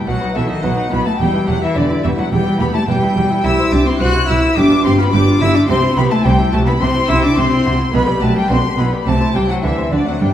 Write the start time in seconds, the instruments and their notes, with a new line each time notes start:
0.07 double bass section B1, lute B2, cello section B2, cello F#3, viola section F#4, violin section F#5
0.21 viola section D#4, lute B4
0.35 double bass section B1, lute B2 A4, cello section B2, cello E3, viola section F#4, violin section E5
0.49 cello D#3, lute D#4, viola section D#4, violin section D#5
0.63 double bass section B1, lute B2 B4, cello section B2, cello F#3, viola section F#4, violin section F#5
0.77 viola section D#4, lute D#4
0.91 double bass section B1, cello section B2, lute B2 E4, cello B3, viola section F#4, violin section B5
1.05 cello A3, lute D#4, viola section D#4, violin section A5
1.19 double bass section E1, lute E2, cello section E2, cello G3, viola section G4, violin section G5
1.33 viola section E4, lute B4
1.47 double bass section E1, lute E2 G4, cello section E2, cello F#3, viola section G4, violin section F#5
1.61 cello E3, viola section E4, lute E4, violin section E5
1.76 double bass section E1, lute E2 B4, cello section E2, cello D3, viola section G4, violin section D5
1.90 viola section E4, lute E4
2.03 double bass section E1, cello section E2, lute E2 F#4, cello E3, viola section G4, violin section E5
2.18 cello F#3, viola section E4, lute E4, violin section F#5
2.32 double bass section E1, cello section E2, lute E2 B3, cello G3, viola section G4, violin section G5
2.46 viola section E4, lute B4
2.60 double bass section E1, cello section E2, lute E2 G4, cello B3, viola section G4, violin section B5
2.74 cello A3, viola section E4, lute E4, violin section A5
2.88 double bass section E1, cello section E2, lute E2 B4, cello G3, viola section G4, violin section G5
3.02 viola section E4, lute E4
3.16 double bass section E1, cello section E2, lute E2 F#4, viola section G4
3.30 viola section E4, lute E4
3.44 cello section C2, double bass section C2, cello E4, viola section G4, violin section E6
3.58 viola section E4, lute C5
3.72 cello section C2, double bass section C2, cello D4, viola section G4, lute G4, violin section D6
3.86 cello C4, viola section E4, lute E4, violin section C6
4.00 cello section C2, double bass section C2, cello F#4, viola section G4, lute C5, violin section F#6
4.15 viola section E4, lute E4
4.29 cello section C2, double bass section C2, cello E4, lute F#4, viola section G4, violin section E6
4.43 viola section E4, lute E4
4.57 double bass section G1, cello section G2, lute G2, cello D4, viola section G4, violin section D6
4.71 viola section F4, lute B4
4.85 double bass section G1, cello section G2, lute G2 G4, cello C4, viola section G4, violin section C6
4.98 cello B3, lute F4, viola section F4, violin section B5
5.12 double bass section G1, cello section G2, lute G2 B4, cello D4, viola section G4, violin section D6
5.27 viola section F4, lute F4
5.41 double bass section G1, cello section G2, lute G2 G4, cello E4, viola section G4, violin section E6
5.55 cello D4, lute F4, viola section F4, violin section D6
5.68 double bass section C2, lute C3, cello section C3, cello C4, viola section G4, violin section C6
5.83 viola section E4, lute C5
5.97 double bass section C2, lute C3 G4, cello section C3, cello B3, viola section G4, violin section B5
6.11 cello A3, lute E4, viola section E4, violin section A5
6.24 double bass section C2, lute C3 C5, cello section C3, cello G3, viola section G4, violin section G5
6.39 viola section E4, lute E4
6.52 double bass section C2, lute C3 F#4, cello section C3, cello A3, viola section G4, violin section A5
6.67 cello B3, lute E4, viola section E4, violin section B5
6.80 double bass section C2, lute C3, cello section C3, cello C4, viola section G4, violin section C6
6.95 viola section E4, lute C5
7.09 double bass section C2, lute C3 G4, cello section C3, cello E4, viola section G4, violin section E6
7.23 cello D4, lute E4, viola section E4, violin section D6
7.37 double bass section C2, lute C3 C5, cello section C3, cello C4, viola section G4, violin section C6
7.51 lute E4, viola section E4
7.65 double bass section C2, lute C3 F#4, cello section C3, viola section G4
7.79 lute E4, viola section E4
7.93 double bass section B1, lute B2, cello section B2, cello B3, viola section B4, violin section B5
8.07 viola section G4, lute D5
8.21 double bass section B1, lute B2 G4, cello section B2, cello A3, viola section B4, violin section A5
8.35 cello G3, lute D4, viola section G4, violin section G5
8.50 double bass section B1, lute B2 D5, cello section B2, cello C4, viola section B4, violin section C6
8.64 lute D4, viola section G4
8.78 double bass section B1, lute B2 E4, cello section B2, cello B3, viola section B4, violin section B5
8.92 lute D4, viola section G4
9.06 double bass section C2, cello section C3, lute C3, cello A3, viola section G4, violin section A5
9.20 viola section E4, lute C5
9.34 double bass section C2, lute C3 G4, cello section C3, cello G3, viola section G4, violin section G5
9.49 cello F#3, viola section E4, lute E4, violin section F#5
9.63 double bass section D2, lute D3, cello section D3, cello E3, viola section D4, violin section E5
9.77 viola section C4, lute C5
9.92 double bass section D2, cello D3, cello section D3, lute D3 F#4, viola section D4, violin section D5
10.06 cello F#3, viola section C4, lute D4, violin section F#5
10.21 double bass section G1, cello section G2, lute G2, cello G3, viola section D4, violin section G5